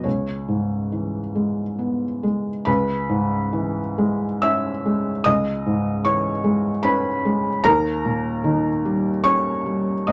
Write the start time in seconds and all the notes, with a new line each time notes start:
0.04 C#2 C#5
0.48 G#2
0.92 E3
1.35 G#3
1.79 B3
2.23 G#3
2.65 C#2 B4 B5
3.09 G#2
3.53 E3
3.98 G#3
4.42 C#4 E5 E6
4.85 G#3
5.24 C#2 D#5 D#6
5.66 G#2
6.05 E3 C#5 C#6
6.44 G#3
6.83 C#4 B4 B5
7.25 G#3
7.64 D#2 A#4 A#5
8.05 A#2
8.44 D#3
8.85 G3
9.24 C#4 C#5 C#6
9.66 G3
10.07 D#2 D#5 D#6